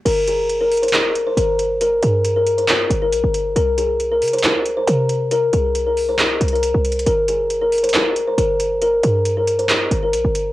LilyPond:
<<
  \new Staff \with { instrumentName = "Kalimba" } { \time 4/4 \key g \phrygian \tempo 4 = 137 bes'8 aes'8. bes'8 c''16 r8. c''16 bes'4 | bes'8 aes'8. bes'8 c''16 r8. bes'4~ bes'16 | bes'8 aes'8. bes'8 c''16 d''8. c''16 bes'4 | bes'8 aes'8. bes'8 c''16 r8. bes'4~ bes'16 |
bes'8 aes'8. bes'8 c''16 r8. c''16 bes'4 | bes'8 aes'8. bes'8 c''16 d''8. bes'4~ bes'16 | }
  \new Staff \with { instrumentName = "808-style bass" } { \clef bass \time 4/4 \key g \phrygian g,,2. g,,4~ | g,,8 g,2 g,,8 bes,,16 g,,8. | c,4. c8. c,8. c4~ | c8 c,2 c,8. c,8. |
g,,2. g,,4~ | g,,8 g,2 g,,8 bes,,16 g,,8. | }
  \new DrumStaff \with { instrumentName = "Drums" } \drummode { \time 4/4 <cymc hh>8 hh8 hh8 <hh hho>32 hh32 hh32 hh32 <hc hh>8 hh8 hh8 hh8 | hh8 hh8 hh8 hh16 hh16 <hc hh>8 hh8 hh8 hh8 | hh8 hh8 hh8 <hh hho>32 hh32 hh32 hh32 hc8 hh8 hh8 hh8 | hh8 hh8 hh8 hho8 \tuplet 3/2 { <hc hh>16 r16 r16 hh16 hh16 hh16 hh16 r16 r16 hh16 hh16 hh16 } |
hh8 hh8 hh8 <hh hho>32 hh32 hh32 hh32 hc8 hh8 hh8 hh8 | hh8 hh8 hh8 hh16 hh16 <hc hh>8 hh8 hh8 hh8 | }
>>